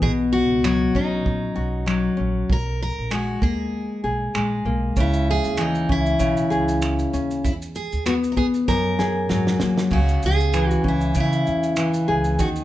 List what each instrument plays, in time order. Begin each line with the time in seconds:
Already playing: nylon-string guitar B3
0.02 upright bass B1, nylon-string guitar B2, steel-string acoustic guitar G#4, kick
0.33 steel-string acoustic guitar F#4
0.49 upright bass C#2
0.64 nylon-string guitar F#3, steel-string acoustic guitar F#4, finger snap
0.95 upright bass B1, nylon-string guitar C#4, steel-string acoustic guitar D#4, kick
1.26 upright bass A#1, kick
1.56 upright bass B1, nylon-string guitar F#4
1.86 nylon-string guitar F#3, finger snap
2.17 upright bass A#1, nylon-string guitar C#4
2.50 upright bass B1, steel-string acoustic guitar A#4, kick
2.82 steel-string acoustic guitar A#4
2.98 upright bass A#1
3.11 nylon-string guitar G#3, steel-string acoustic guitar F#4, finger snap
3.41 upright bass D#2, nylon-string guitar A#3, steel-string acoustic guitar G#4, kick
4.04 upright bass B1, nylon-string guitar G#4
4.35 upright bass A#1, nylon-string guitar G#3, finger snap
4.65 upright bass B1, nylon-string guitar A#3
4.96 upright bass C#2, nylon-string guitar C#3, steel-string acoustic guitar E4, kick, shaker
5.13 shaker
5.31 steel-string acoustic guitar G#4
5.44 upright bass D#2, shaker
5.57 nylon-string guitar E3, steel-string acoustic guitar D#4, finger snap, shaker
5.75 shaker
5.89 upright bass C#2, nylon-string guitar C#4, steel-string acoustic guitar E4, kick
6.06 shaker
6.19 upright bass B1, nylon-string guitar C#3, kick, shaker
6.37 shaker
6.50 upright bass C#2, nylon-string guitar G#4, shaker
6.68 shaker
6.82 finger snap, shaker
6.99 shaker
7.13 upright bass D#2, nylon-string guitar C#4, shaker
7.31 shaker
7.44 upright bass E2, steel-string acoustic guitar E4, kick, shaker
7.62 shaker
7.75 steel-string acoustic guitar G#4, shaker
7.92 upright bass D#2, shaker
8.06 nylon-string guitar B3, steel-string acoustic guitar F#4, finger snap, shaker
8.24 shaker
8.32 steel-string acoustic guitar A#4
8.36 upright bass E2, nylon-string guitar B3, steel-string acoustic guitar G#4, kick
8.54 shaker
8.68 nylon-string guitar F#2, upright bass F#2, steel-string acoustic guitar A#4, kick, snare
8.99 upright bass F#2, nylon-string guitar G#4, snare
9.29 upright bass G#2, nylon-string guitar F#3, snare
9.47 snare
9.60 upright bass F#2, nylon-string guitar A#3, snare
9.78 snare
9.91 upright bass C#2, nylon-string guitar C#3, steel-string acoustic guitar F#4, kick, crash
10.09 shaker
10.23 upright bass C#2, steel-string acoustic guitar G#4, shaker
10.40 shaker
10.53 nylon-string guitar E3, finger snap, shaker
10.69 steel-string acoustic guitar F#4, shaker
10.84 upright bass C#2, nylon-string guitar C#4, kick
10.88 steel-string acoustic guitar E4
11.01 shaker
11.14 nylon-string guitar C#3, upright bass C#3, kick, shaker
11.20 steel-string acoustic guitar E4
11.33 shaker
11.47 upright bass E2, shaker
11.63 shaker
11.76 nylon-string guitar E3, finger snap, shaker
11.94 shaker
12.08 upright bass C#2, nylon-string guitar G#4
12.24 shaker
12.39 upright bass D#2, nylon-string guitar D#3, steel-string acoustic guitar F#4, kick, shaker
12.56 shaker